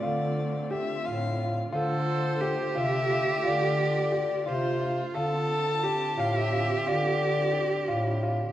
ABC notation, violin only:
X:1
M:5/8
L:1/16
Q:1/4=88
K:Dm
V:1 name="Violin"
d4 e2 f3 z | c6 e4 | d6 c3 z | a6 f e3 |
d8 z2 |]